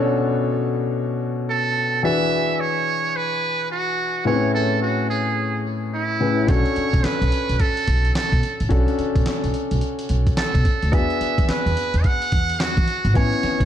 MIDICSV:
0, 0, Header, 1, 6, 480
1, 0, Start_track
1, 0, Tempo, 555556
1, 1763, Time_signature, 4, 2, 24, 8
1, 11794, End_track
2, 0, Start_track
2, 0, Title_t, "Muted trumpet"
2, 0, Program_c, 0, 59
2, 1294, Note_on_c, 0, 69, 93
2, 1735, Note_off_c, 0, 69, 0
2, 1770, Note_on_c, 0, 76, 105
2, 2247, Note_on_c, 0, 73, 96
2, 2260, Note_off_c, 0, 76, 0
2, 2729, Note_on_c, 0, 71, 104
2, 2742, Note_off_c, 0, 73, 0
2, 3204, Note_off_c, 0, 71, 0
2, 3209, Note_on_c, 0, 66, 94
2, 3653, Note_off_c, 0, 66, 0
2, 3687, Note_on_c, 0, 73, 87
2, 3908, Note_off_c, 0, 73, 0
2, 3926, Note_on_c, 0, 69, 83
2, 4148, Note_off_c, 0, 69, 0
2, 4164, Note_on_c, 0, 66, 78
2, 4387, Note_off_c, 0, 66, 0
2, 4405, Note_on_c, 0, 68, 74
2, 4858, Note_off_c, 0, 68, 0
2, 5133, Note_on_c, 0, 64, 86
2, 5611, Note_on_c, 0, 73, 96
2, 5624, Note_off_c, 0, 64, 0
2, 6090, Note_on_c, 0, 71, 98
2, 6103, Note_off_c, 0, 73, 0
2, 6570, Note_on_c, 0, 69, 99
2, 6583, Note_off_c, 0, 71, 0
2, 7046, Note_off_c, 0, 69, 0
2, 7050, Note_on_c, 0, 69, 83
2, 7408, Note_off_c, 0, 69, 0
2, 8967, Note_on_c, 0, 69, 90
2, 9447, Note_on_c, 0, 76, 98
2, 9460, Note_off_c, 0, 69, 0
2, 9925, Note_off_c, 0, 76, 0
2, 9929, Note_on_c, 0, 71, 94
2, 10409, Note_on_c, 0, 78, 113
2, 10422, Note_off_c, 0, 71, 0
2, 10892, Note_on_c, 0, 66, 95
2, 10905, Note_off_c, 0, 78, 0
2, 11367, Note_off_c, 0, 66, 0
2, 11374, Note_on_c, 0, 73, 93
2, 11794, Note_off_c, 0, 73, 0
2, 11794, End_track
3, 0, Start_track
3, 0, Title_t, "Grand piano"
3, 0, Program_c, 1, 0
3, 0, Control_c, 1, 64, 127
3, 0, Note_on_c, 1, 47, 78
3, 0, Note_on_c, 1, 61, 53
3, 0, Note_on_c, 1, 62, 67
3, 0, Note_on_c, 1, 66, 71
3, 0, Note_on_c, 1, 69, 73
3, 0, Note_on_c, 1, 73, 88
3, 1723, Note_off_c, 1, 47, 0
3, 1728, Note_off_c, 1, 66, 0
3, 1731, Note_off_c, 1, 69, 0
3, 1733, Note_off_c, 1, 73, 0
3, 1747, Note_off_c, 1, 62, 0
3, 1754, Note_on_c, 1, 52, 65
3, 1760, Note_on_c, 1, 62, 63
3, 1765, Note_on_c, 1, 66, 59
3, 1770, Note_on_c, 1, 68, 59
3, 1774, Control_c, 1, 64, 0
3, 1775, Note_on_c, 1, 71, 72
3, 1776, Note_off_c, 1, 61, 0
3, 1929, Control_c, 1, 64, 127
3, 3644, Note_off_c, 1, 52, 0
3, 3647, Note_off_c, 1, 62, 0
3, 3649, Note_off_c, 1, 66, 0
3, 3652, Note_off_c, 1, 68, 0
3, 3654, Note_off_c, 1, 71, 0
3, 3671, Note_on_c, 1, 45, 60
3, 3676, Note_on_c, 1, 60, 48
3, 3682, Note_on_c, 1, 64, 59
3, 3686, Note_on_c, 1, 68, 61
3, 3692, Control_c, 1, 64, 0
3, 3692, Note_on_c, 1, 71, 68
3, 3734, Note_on_c, 1, 61, 58
3, 3749, Note_off_c, 1, 60, 0
3, 3843, Control_c, 1, 64, 127
3, 5323, Note_off_c, 1, 45, 0
3, 5329, Note_off_c, 1, 64, 0
3, 5331, Note_off_c, 1, 68, 0
3, 5334, Note_off_c, 1, 71, 0
3, 5349, Note_off_c, 1, 61, 0
3, 5359, Note_on_c, 1, 45, 46
3, 5362, Note_on_c, 1, 61, 41
3, 5364, Note_on_c, 1, 64, 43
3, 5366, Note_on_c, 1, 68, 43
3, 5370, Note_on_c, 1, 71, 52
3, 5579, Note_off_c, 1, 61, 0
3, 5592, Note_on_c, 1, 61, 66
3, 5598, Note_on_c, 1, 62, 55
3, 5601, Note_off_c, 1, 45, 0
3, 5603, Note_off_c, 1, 64, 0
3, 5604, Note_off_c, 1, 68, 0
3, 5606, Note_off_c, 1, 71, 0
3, 5606, Note_on_c, 1, 66, 63
3, 5613, Note_on_c, 1, 69, 72
3, 5614, Control_c, 1, 64, 0
3, 5760, Control_c, 1, 64, 127
3, 7483, Note_off_c, 1, 61, 0
3, 7486, Note_off_c, 1, 62, 0
3, 7490, Note_off_c, 1, 66, 0
3, 7493, Note_off_c, 1, 69, 0
3, 7509, Note_on_c, 1, 61, 77
3, 7515, Note_on_c, 1, 62, 68
3, 7522, Note_on_c, 1, 66, 67
3, 7529, Note_on_c, 1, 69, 87
3, 9401, Note_off_c, 1, 61, 0
3, 9404, Note_off_c, 1, 62, 0
3, 9408, Note_off_c, 1, 66, 0
3, 9411, Note_off_c, 1, 69, 0
3, 9431, Note_on_c, 1, 59, 65
3, 9438, Note_on_c, 1, 62, 61
3, 9444, Note_on_c, 1, 66, 58
3, 9451, Note_on_c, 1, 68, 79
3, 9455, Control_c, 1, 64, 0
3, 9587, Control_c, 1, 64, 127
3, 11322, Note_off_c, 1, 59, 0
3, 11326, Note_off_c, 1, 62, 0
3, 11329, Note_off_c, 1, 66, 0
3, 11332, Note_off_c, 1, 68, 0
3, 11353, Note_on_c, 1, 59, 66
3, 11360, Note_on_c, 1, 61, 62
3, 11367, Note_on_c, 1, 64, 57
3, 11373, Note_on_c, 1, 80, 71
3, 11375, Control_c, 1, 64, 0
3, 11500, Control_c, 1, 64, 127
3, 11794, Note_off_c, 1, 59, 0
3, 11794, Note_off_c, 1, 61, 0
3, 11794, Note_off_c, 1, 64, 0
3, 11794, Note_off_c, 1, 80, 0
3, 11794, End_track
4, 0, Start_track
4, 0, Title_t, "Upright bass"
4, 0, Program_c, 2, 32
4, 5605, Note_on_c, 2, 35, 101
4, 5716, Note_off_c, 2, 35, 0
4, 5993, Note_on_c, 2, 47, 89
4, 6062, Note_off_c, 2, 47, 0
4, 6234, Note_on_c, 2, 35, 89
4, 6302, Note_off_c, 2, 35, 0
4, 6474, Note_on_c, 2, 35, 79
4, 6542, Note_off_c, 2, 35, 0
4, 6807, Note_on_c, 2, 35, 87
4, 6988, Note_off_c, 2, 35, 0
4, 7193, Note_on_c, 2, 47, 95
4, 7261, Note_off_c, 2, 47, 0
4, 7435, Note_on_c, 2, 33, 84
4, 7502, Note_off_c, 2, 33, 0
4, 7524, Note_on_c, 2, 35, 100
4, 7636, Note_off_c, 2, 35, 0
4, 7912, Note_on_c, 2, 47, 92
4, 7981, Note_off_c, 2, 47, 0
4, 8154, Note_on_c, 2, 35, 88
4, 8222, Note_off_c, 2, 35, 0
4, 8393, Note_on_c, 2, 35, 85
4, 8462, Note_off_c, 2, 35, 0
4, 8724, Note_on_c, 2, 35, 83
4, 8905, Note_off_c, 2, 35, 0
4, 9113, Note_on_c, 2, 47, 93
4, 9181, Note_off_c, 2, 47, 0
4, 9355, Note_on_c, 2, 38, 90
4, 9423, Note_off_c, 2, 38, 0
4, 9445, Note_on_c, 2, 40, 99
4, 9557, Note_off_c, 2, 40, 0
4, 9836, Note_on_c, 2, 52, 90
4, 9903, Note_off_c, 2, 52, 0
4, 10076, Note_on_c, 2, 40, 85
4, 10143, Note_off_c, 2, 40, 0
4, 10316, Note_on_c, 2, 40, 79
4, 10384, Note_off_c, 2, 40, 0
4, 10649, Note_on_c, 2, 40, 88
4, 10828, Note_off_c, 2, 40, 0
4, 11036, Note_on_c, 2, 52, 100
4, 11103, Note_off_c, 2, 52, 0
4, 11272, Note_on_c, 2, 32, 97
4, 11341, Note_off_c, 2, 32, 0
4, 11366, Note_on_c, 2, 33, 104
4, 11477, Note_off_c, 2, 33, 0
4, 11754, Note_on_c, 2, 45, 97
4, 11794, Note_off_c, 2, 45, 0
4, 11794, End_track
5, 0, Start_track
5, 0, Title_t, "Muted upright bass strokes"
5, 5849, Note_on_c, 9, 29, 44
5, 5936, Note_off_c, 9, 29, 0
5, 6087, Note_on_c, 9, 29, 45
5, 6174, Note_off_c, 9, 29, 0
5, 7766, Note_on_c, 9, 29, 47
5, 7852, Note_off_c, 9, 29, 0
5, 8005, Note_on_c, 9, 29, 44
5, 8091, Note_off_c, 9, 29, 0
5, 9684, Note_on_c, 9, 29, 46
5, 9770, Note_off_c, 9, 29, 0
5, 9926, Note_on_c, 9, 29, 45
5, 10012, Note_off_c, 9, 29, 0
5, 11609, Note_on_c, 9, 29, 49
5, 11695, Note_off_c, 9, 29, 0
5, 11794, End_track
6, 0, Start_track
6, 0, Title_t, "Drums"
6, 5602, Note_on_c, 9, 42, 73
6, 5603, Note_on_c, 9, 36, 121
6, 5688, Note_off_c, 9, 42, 0
6, 5689, Note_off_c, 9, 36, 0
6, 5750, Note_on_c, 9, 42, 38
6, 5837, Note_off_c, 9, 42, 0
6, 5842, Note_on_c, 9, 42, 56
6, 5929, Note_off_c, 9, 42, 0
6, 5991, Note_on_c, 9, 36, 98
6, 5993, Note_on_c, 9, 42, 62
6, 6078, Note_off_c, 9, 36, 0
6, 6080, Note_off_c, 9, 42, 0
6, 6082, Note_on_c, 9, 38, 92
6, 6084, Note_on_c, 9, 42, 60
6, 6092, Note_on_c, 9, 39, 73
6, 6169, Note_off_c, 9, 38, 0
6, 6170, Note_off_c, 9, 42, 0
6, 6178, Note_off_c, 9, 39, 0
6, 6237, Note_on_c, 9, 42, 51
6, 6323, Note_off_c, 9, 42, 0
6, 6325, Note_on_c, 9, 42, 68
6, 6412, Note_off_c, 9, 42, 0
6, 6474, Note_on_c, 9, 42, 56
6, 6561, Note_off_c, 9, 42, 0
6, 6562, Note_on_c, 9, 42, 63
6, 6565, Note_on_c, 9, 36, 89
6, 6649, Note_off_c, 9, 42, 0
6, 6651, Note_off_c, 9, 36, 0
6, 6714, Note_on_c, 9, 42, 61
6, 6801, Note_off_c, 9, 42, 0
6, 6804, Note_on_c, 9, 42, 78
6, 6805, Note_on_c, 9, 36, 78
6, 6891, Note_off_c, 9, 42, 0
6, 6892, Note_off_c, 9, 36, 0
6, 6953, Note_on_c, 9, 42, 53
6, 7039, Note_off_c, 9, 42, 0
6, 7044, Note_on_c, 9, 38, 123
6, 7044, Note_on_c, 9, 42, 69
6, 7054, Note_on_c, 9, 39, 101
6, 7131, Note_off_c, 9, 38, 0
6, 7131, Note_off_c, 9, 42, 0
6, 7140, Note_off_c, 9, 39, 0
6, 7192, Note_on_c, 9, 36, 89
6, 7198, Note_on_c, 9, 42, 55
6, 7278, Note_off_c, 9, 36, 0
6, 7284, Note_off_c, 9, 42, 0
6, 7285, Note_on_c, 9, 42, 67
6, 7371, Note_off_c, 9, 42, 0
6, 7432, Note_on_c, 9, 42, 47
6, 7519, Note_off_c, 9, 42, 0
6, 7522, Note_on_c, 9, 36, 121
6, 7522, Note_on_c, 9, 42, 72
6, 7608, Note_off_c, 9, 36, 0
6, 7608, Note_off_c, 9, 42, 0
6, 7672, Note_on_c, 9, 42, 40
6, 7759, Note_off_c, 9, 42, 0
6, 7764, Note_on_c, 9, 42, 52
6, 7851, Note_off_c, 9, 42, 0
6, 7910, Note_on_c, 9, 36, 102
6, 7912, Note_on_c, 9, 42, 61
6, 7997, Note_off_c, 9, 36, 0
6, 7998, Note_off_c, 9, 42, 0
6, 8000, Note_on_c, 9, 38, 100
6, 8001, Note_on_c, 9, 42, 62
6, 8009, Note_on_c, 9, 39, 72
6, 8086, Note_off_c, 9, 38, 0
6, 8088, Note_off_c, 9, 42, 0
6, 8096, Note_off_c, 9, 39, 0
6, 8155, Note_on_c, 9, 42, 49
6, 8241, Note_off_c, 9, 42, 0
6, 8242, Note_on_c, 9, 42, 67
6, 8328, Note_off_c, 9, 42, 0
6, 8391, Note_on_c, 9, 42, 57
6, 8477, Note_off_c, 9, 42, 0
6, 8479, Note_on_c, 9, 42, 66
6, 8565, Note_off_c, 9, 42, 0
6, 8629, Note_on_c, 9, 42, 62
6, 8716, Note_off_c, 9, 42, 0
6, 8719, Note_on_c, 9, 42, 81
6, 8805, Note_off_c, 9, 42, 0
6, 8870, Note_on_c, 9, 42, 52
6, 8871, Note_on_c, 9, 36, 93
6, 8957, Note_off_c, 9, 36, 0
6, 8957, Note_off_c, 9, 42, 0
6, 8961, Note_on_c, 9, 38, 123
6, 8961, Note_on_c, 9, 42, 66
6, 8970, Note_on_c, 9, 39, 99
6, 9047, Note_off_c, 9, 38, 0
6, 9047, Note_off_c, 9, 42, 0
6, 9057, Note_off_c, 9, 39, 0
6, 9111, Note_on_c, 9, 36, 91
6, 9114, Note_on_c, 9, 42, 63
6, 9197, Note_off_c, 9, 36, 0
6, 9200, Note_off_c, 9, 42, 0
6, 9202, Note_on_c, 9, 42, 63
6, 9203, Note_on_c, 9, 36, 84
6, 9289, Note_off_c, 9, 36, 0
6, 9289, Note_off_c, 9, 42, 0
6, 9353, Note_on_c, 9, 42, 50
6, 9439, Note_off_c, 9, 42, 0
6, 9443, Note_on_c, 9, 36, 113
6, 9444, Note_on_c, 9, 42, 72
6, 9530, Note_off_c, 9, 36, 0
6, 9530, Note_off_c, 9, 42, 0
6, 9593, Note_on_c, 9, 42, 38
6, 9679, Note_off_c, 9, 42, 0
6, 9685, Note_on_c, 9, 42, 57
6, 9772, Note_off_c, 9, 42, 0
6, 9833, Note_on_c, 9, 36, 91
6, 9835, Note_on_c, 9, 42, 62
6, 9919, Note_off_c, 9, 36, 0
6, 9922, Note_off_c, 9, 42, 0
6, 9925, Note_on_c, 9, 38, 93
6, 9926, Note_on_c, 9, 42, 60
6, 9934, Note_on_c, 9, 39, 74
6, 10011, Note_off_c, 9, 38, 0
6, 10013, Note_off_c, 9, 42, 0
6, 10021, Note_off_c, 9, 39, 0
6, 10079, Note_on_c, 9, 42, 53
6, 10166, Note_off_c, 9, 42, 0
6, 10168, Note_on_c, 9, 42, 74
6, 10254, Note_off_c, 9, 42, 0
6, 10315, Note_on_c, 9, 42, 55
6, 10401, Note_off_c, 9, 42, 0
6, 10403, Note_on_c, 9, 42, 62
6, 10407, Note_on_c, 9, 36, 92
6, 10490, Note_off_c, 9, 42, 0
6, 10494, Note_off_c, 9, 36, 0
6, 10557, Note_on_c, 9, 42, 54
6, 10643, Note_off_c, 9, 42, 0
6, 10644, Note_on_c, 9, 42, 83
6, 10647, Note_on_c, 9, 36, 91
6, 10731, Note_off_c, 9, 42, 0
6, 10734, Note_off_c, 9, 36, 0
6, 10795, Note_on_c, 9, 42, 52
6, 10882, Note_off_c, 9, 42, 0
6, 10887, Note_on_c, 9, 38, 119
6, 10887, Note_on_c, 9, 42, 68
6, 10896, Note_on_c, 9, 39, 99
6, 10973, Note_off_c, 9, 38, 0
6, 10973, Note_off_c, 9, 42, 0
6, 10983, Note_off_c, 9, 39, 0
6, 11033, Note_on_c, 9, 36, 90
6, 11036, Note_on_c, 9, 42, 60
6, 11120, Note_off_c, 9, 36, 0
6, 11122, Note_off_c, 9, 42, 0
6, 11125, Note_on_c, 9, 42, 62
6, 11211, Note_off_c, 9, 42, 0
6, 11273, Note_on_c, 9, 42, 49
6, 11360, Note_off_c, 9, 42, 0
6, 11364, Note_on_c, 9, 36, 113
6, 11365, Note_on_c, 9, 42, 70
6, 11451, Note_off_c, 9, 36, 0
6, 11451, Note_off_c, 9, 42, 0
6, 11514, Note_on_c, 9, 42, 38
6, 11600, Note_off_c, 9, 42, 0
6, 11605, Note_on_c, 9, 42, 59
6, 11606, Note_on_c, 9, 38, 55
6, 11692, Note_off_c, 9, 38, 0
6, 11692, Note_off_c, 9, 42, 0
6, 11753, Note_on_c, 9, 36, 96
6, 11756, Note_on_c, 9, 42, 61
6, 11794, Note_off_c, 9, 36, 0
6, 11794, Note_off_c, 9, 42, 0
6, 11794, End_track
0, 0, End_of_file